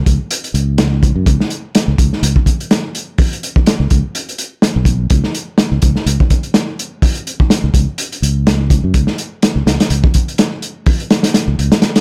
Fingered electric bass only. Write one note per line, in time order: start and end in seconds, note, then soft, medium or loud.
0.06 0.17 C#2 medium
0.54 1.11 C#2 medium
1.16 1.24 F#2 medium
1.26 1.37 C#2 medium
1.88 1.96 C#2 medium
1.98 2.09 C#2 medium
2.23 2.33 C#2 loud
3.80 3.88 C#2 medium
3.91 4.01 C#2 medium
4.76 5.07 B1 medium
5.10 5.21 C#2 medium
5.72 5.80 C#2 medium
5.83 5.93 C#2 medium
6.06 6.17 C#2 loud
7.64 7.72 C#2 medium
7.74 7.85 C#2 medium
8.22 8.79 C#2 medium
8.84 8.92 F#2 medium
8.94 9.05 C#2 medium
9.56 9.64 C#2 medium
9.66 9.77 C#2 medium
9.90 10.01 C#2 loud
11.48 11.56 C#2 medium
11.59 11.69 C#2 medium